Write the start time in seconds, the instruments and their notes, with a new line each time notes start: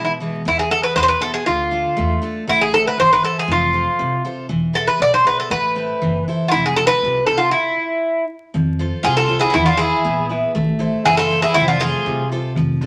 Already playing: steel-string acoustic guitar B2 E3 G#3 B3
0.04 bouzouki E4
0.20 steel-string acoustic guitar E3 G#3 B3
0.45 upright bass E2, steel-string acoustic guitar E3, bouzouki E4
0.59 bouzouki G#4
0.71 steel-string acoustic guitar B3 E4 G#4, bouzouki A4
0.83 bouzouki B4
0.96 upright bass E2, steel-string acoustic guitar B2, bouzouki B4 C5
1.03 bouzouki C5
1.08 bouzouki B4
1.20 steel-string acoustic guitar B3 E4 G#4, bouzouki A4
1.34 bouzouki G#4
1.46 upright bass D2, steel-string acoustic guitar D3, bouzouki F4
1.71 steel-string acoustic guitar D4 F4 A4
1.97 upright bass E2, steel-string acoustic guitar A3
2.22 steel-string acoustic guitar D4 F4 A4
2.47 upright bass A1, steel-string acoustic guitar A3, bouzouki E4
2.61 bouzouki G#4
2.71 steel-string acoustic guitar E4 A4 C5, bouzouki A4
2.87 bouzouki B4
2.98 upright bass G#1, steel-string acoustic guitar E3, bouzouki C5
3.13 bouzouki B4
3.23 steel-string acoustic guitar E4 A4 C5, bouzouki A4
3.39 bouzouki G#4
3.48 upright bass F1, steel-string acoustic guitar F3, bouzouki F4
3.73 steel-string acoustic guitar F4 A4 C5
3.99 upright bass C2, steel-string acoustic guitar C3
4.25 steel-string acoustic guitar F4 A4 C5
4.49 upright bass E1, steel-string acoustic guitar E3
4.73 steel-string acoustic guitar E4 G#4 B4, bouzouki A4
4.87 bouzouki B4
5.00 upright bass B1, steel-string acoustic guitar B2, bouzouki D5
5.14 bouzouki C5
5.24 steel-string acoustic guitar E4 G#4 B4, bouzouki B4
5.40 bouzouki A4
5.50 upright bass A1, steel-string acoustic guitar A3, bouzouki B4
5.75 steel-string acoustic guitar C4 E4 A4
6.02 upright bass F#1, steel-string acoustic guitar E3
6.28 steel-string acoustic guitar E4 A4 C5
6.48 bouzouki E4 F4
6.53 upright bass F1, steel-string acoustic guitar F3
6.66 bouzouki G#4
6.76 steel-string acoustic guitar C4 F4 A4, bouzouki A4
6.87 bouzouki B4
7.03 upright bass C2, steel-string acoustic guitar C3
7.27 steel-string acoustic guitar F4 A4 C5, bouzouki A4
7.37 bouzouki F4
7.51 bouzouki E4
8.54 upright bass F2, steel-string acoustic guitar F3, darbuka dum
8.79 steel-string acoustic guitar F4 A4 C5, darbuka tek
9.03 upright bass C2, steel-string acoustic guitar C3, bouzouki F4 G#4, darbuka tek
9.16 bouzouki F4 A4
9.28 steel-string acoustic guitar F4 A4 C5, darbuka tek
9.39 bouzouki E4 G#4
9.50 bouzouki B3 E4
9.55 upright bass E2, steel-string acoustic guitar E3, darbuka dum
9.66 bouzouki D4 F4
9.77 steel-string acoustic guitar E4 G#4 B4, bouzouki E4 G#4
9.82 darbuka tek
10.05 upright bass A#1, steel-string acoustic guitar B3, darbuka tek
10.29 steel-string acoustic guitar E4 G#4 B4, darbuka tek
10.45 darbuka tek
10.55 upright bass A1, steel-string acoustic guitar A3, darbuka dum
10.79 steel-string acoustic guitar E4 A4 C5, darbuka tek
11.05 upright bass F#1, steel-string acoustic guitar E3, bouzouki E4 G#4, darbuka tek
11.17 bouzouki F4 A4
11.30 steel-string acoustic guitar E4 A4 C5, darbuka tek
11.42 bouzouki E4 G#4
11.54 upright bass F1, steel-string acoustic guitar F3, bouzouki C4 E4, darbuka dum
11.68 bouzouki D4 F4, darbuka tek
11.80 steel-string acoustic guitar A3 F4 C5, bouzouki F4 G#4, darbuka tek
12.05 upright bass C2, steel-string acoustic guitar C3, darbuka tek
12.30 steel-string acoustic guitar F4 A4 C5, darbuka tek
12.55 upright bass F1, steel-string acoustic guitar F3, darbuka dum
12.81 steel-string acoustic guitar D4 F4 A4, darbuka tek